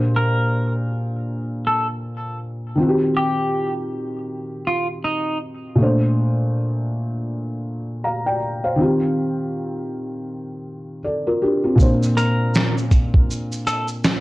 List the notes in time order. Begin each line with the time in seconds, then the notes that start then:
Already playing: A#2 A#3 D4 G4 C5
0.16 A#4
1.67 A4
2.76 D#3 C4
2.80 F4 F#4
2.89 G4
3.17 G4
4.67 F4
5.04 D#4
5.75 A#2 A3
5.80 D4 C5
8.04 F5 A#5
8.26 D5 G5
8.64 C5 F5
8.76 D#3 C4
8.80 F4 G4
11.04 A4 D5
11.27 F4 A#4
11.42 D4 G4
11.64 C4 F4
11.75 A#2 A#3, kick
11.80 D4 C5, shaker
12.03 shaker
12.17 A#4, closed hi-hat, shaker
12.55 finger snap, snare, shaker
12.78 shaker
12.91 kick, closed hi-hat, shaker
13.14 kick
13.31 shaker
13.52 shaker
13.67 A4, closed hi-hat, shaker
13.88 shaker
14.04 finger snap, snare, shaker